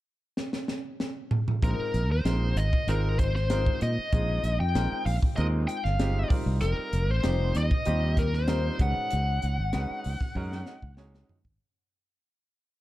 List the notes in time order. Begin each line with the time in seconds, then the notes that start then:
0.37 snare
0.53 snare
0.68 snare
1.00 snare
1.31 mid tom
1.48 mid tom
1.62 A#1 G#3 C4 D#4 F4 A#4, kick, closed hi-hat
1.94 A#1, closed hi-hat
2.10 D#2 C5
2.25 A#1 G#3 C4 D#4 F4 A#4, snare, closed hi-hat
2.56 G#1 D#5, closed hi-hat
2.73 kick
2.87 G#1 G#3 C4 D#4 F4 A#4, closed hi-hat
3.19 C5, kick, closed hi-hat
3.36 C5, snare
3.50 G#3 C4 D#4 F4 A#4, snare, closed hi-hat
3.66 kick
3.81 A#2 D#5, closed hi-hat
3.98 muted fretless electric bass stroke
4.13 A#1 G#3 C4 D#4 F4 G#4, kick, closed hi-hat
4.43 A#1, closed hi-hat
4.60 F2 G5
4.75 A#1 G#3 C4 D#4 F4 A#4, snare, closed hi-hat
5.06 A#1 F5, open hi-hat
5.23 kick
5.36 D#2 G#3 C4 D#4 F4 A#4 D#5, closed hi-hat
5.68 G5, closed hi-hat
5.84 G1 F5, snare
5.99 G#3 C4 D#4 F4 G4, snare, closed hi-hat
6.30 G3 C4 D#4 F4 A#4, muted fretless electric bass stroke, kick, open hi-hat
6.46 C2
6.61 F1 A#4, closed hi-hat
6.93 F1, closed hi-hat
7.09 A1 C5
7.23 F1 G3 C4 D#4 F4 G4, snare, closed hi-hat
7.55 D#2 D#5, snare, closed hi-hat
7.71 kick
7.85 D#2 G3 C4 D#4 F4 G4, closed hi-hat
8.17 A#4, kick, closed hi-hat
8.34 C5, snare
8.48 G3 C4 D#4 F4 A#4, snare, closed hi-hat
8.79 C#2 G#3 C#4 D#4 F#4 B4 F#5, kick, closed hi-hat
8.98 muted fretless electric bass stroke
9.11 C#2, closed hi-hat
9.42 C#2, closed hi-hat
9.59 G#1
9.73 C#2 G#3 C#4 D#4 F#4 B4, snare, closed hi-hat
9.90 muted fretless electric bass stroke
10.04 C#2, open hi-hat
10.21 muted fretless electric bass stroke, kick, snare
10.35 F#2 G#3 C#4 D#4 F#4 A#4, kick
10.52 snare
10.66 D#5, snare
10.82 C#2 F#5, kick
10.97 G#3 C#4 D#4 F#4 C#5 G#5, snare
11.15 snare
11.29 muted fretless electric bass stroke, floor tom
11.45 G#1, kick